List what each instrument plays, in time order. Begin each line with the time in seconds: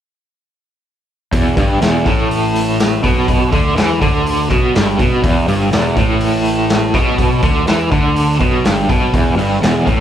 1.32 picked electric bass E1, overdriven electric guitar E2, kick, open hi-hat
1.57 picked electric bass G1, overdriven electric guitar G2, kick, open hi-hat
1.81 picked electric bass E1, overdriven electric guitar E2, snare, open hi-hat
2.06 picked electric bass A1, overdriven electric guitar A2, kick, open hi-hat
2.31 open hi-hat
2.55 open hi-hat
2.80 snare, open hi-hat
3.04 picked electric bass B1, overdriven electric guitar B2, kick, open hi-hat
3.28 kick, open hi-hat
3.53 picked electric bass D2, overdriven electric guitar D3, kick, open hi-hat
3.76 picked electric bass E2, overdriven electric guitar E3, snare, open hi-hat
4.02 picked electric bass D2, overdriven electric guitar D3, kick, open hi-hat
4.26 open hi-hat
4.50 picked electric bass B1, overdriven electric guitar B2, kick, open hi-hat
4.75 picked electric bass G1, overdriven electric guitar G2, snare, open hi-hat
4.98 picked electric bass B1, overdriven electric guitar B2, kick, open hi-hat
5.22 picked electric bass E1, overdriven electric guitar E2, kick, open hi-hat
5.48 picked electric bass G1, overdriven electric guitar G2, open hi-hat
5.72 picked electric bass E1, overdriven electric guitar E2, snare, open hi-hat
5.96 picked electric bass A1, overdriven electric guitar A2, kick, open hi-hat
6.21 open hi-hat
6.45 open hi-hat
6.70 snare, open hi-hat
6.94 picked electric bass B1, overdriven electric guitar B2, kick, snare, open hi-hat
7.18 kick, open hi-hat
7.42 picked electric bass D2, overdriven electric guitar D3, kick, open hi-hat
7.67 picked electric bass E2, overdriven electric guitar E3, snare, open hi-hat
7.92 picked electric bass D2, overdriven electric guitar D3, kick, open hi-hat
8.16 open hi-hat
8.40 picked electric bass B1, overdriven electric guitar B2, kick, open hi-hat
8.65 picked electric bass G1, overdriven electric guitar G2, snare, open hi-hat
8.89 picked electric bass B1, overdriven electric guitar B2, kick, open hi-hat
9.13 picked electric bass E1, overdriven electric guitar E2, kick, open hi-hat
9.37 picked electric bass G1, overdriven electric guitar G2, open hi-hat
9.61 picked electric bass E1, overdriven electric guitar E2, snare, open hi-hat
9.86 picked electric bass A1, overdriven electric guitar A2, kick, open hi-hat